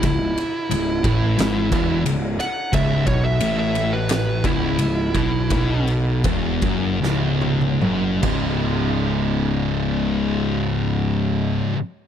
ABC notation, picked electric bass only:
X:1
M:4/4
L:1/8
Q:1/4=83
K:C#m
V:1 name="Picked electric bass" clef=bass
C,,, z C,,, A,,, G,,, E,,, C,,, z | C,,, B,,, A,,,3 C,,, C,,, B,,, | B,,,2 E,,, F,,, C,,,2 F,,, C,,,- | C,,,8 |]